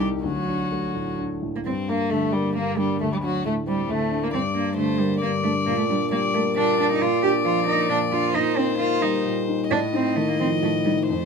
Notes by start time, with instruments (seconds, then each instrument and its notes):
Already playing: grand piano C2
0.00 grand piano D#4 G4
0.24 grand piano D2, cello F#3, violin F#4
0.48 grand piano D4
0.72 grand piano A3
0.95 grand piano A2
1.18 grand piano D4
1.42 grand piano A2
1.56 cello A#3
1.66 grand piano G2, violin C4, cello C4
1.89 violin A#3, cello A#3, grand piano D4
2.10 grand piano D3, violin A3, cello A3
2.32 violin G3, cello G3, grand piano A#3
2.56 grand piano G2, violin A#3, cello A#3
2.78 cello G3, violin G3, grand piano D4
3.01 grand piano D2, cello A3, violin A3
3.12 violin G3, cello G3
3.23 cello F#3, grand piano D4, violin F#4
3.45 grand piano A2, cello A3, violin A3
3.67 cello G3, violin G3, grand piano C4
3.89 grand piano D2, cello A3, violin A3
4.11 grand piano D4
4.23 violin A#3, cello A#3
4.33 grand piano G2, cello C4, violin D5
4.55 cello A#3, grand piano D4
4.77 grand piano D3, cello A3, violin C5
4.99 cello G3, grand piano A#3
5.21 grand piano G2, cello A#3, violin D5
5.43 cello A3, grand piano D4
5.66 grand piano A#2, cello A#3
5.78 cello A3
5.89 cello G3, grand piano D4
6.11 grand piano G3, cello A#3, violin D5
6.34 cello A3, grand piano A#3
6.56 grand piano A#2, cello D4, violin D5
6.79 grand piano D4, cello D4
6.91 cello D#4
7.01 grand piano A#2, cello F4, violin D5
7.23 grand piano D4, cello G4
7.45 grand piano F3, cello F4
7.67 grand piano A#3, cello D#4
7.90 grand piano A#2, cello D4
8.12 grand piano D4, cello F4
8.34 grand piano A#2, cello D#4, violin C5
8.57 cello C4, grand piano D#4
8.79 grand piano A#3, cello F4
9.02 grand piano G3, cello D#4
9.25 grand piano A#2
9.48 grand piano D#4
9.70 grand piano A2, cello D4, violin D#5
9.93 cello C4, grand piano D#4
10.16 grand piano D#3, cello A3
10.28 cello A#3
10.39 grand piano F3, cello C4
10.62 grand piano A2, cello A3
10.85 cello G3, grand piano D#4
11.08 grand piano F2, cello A3, violin C5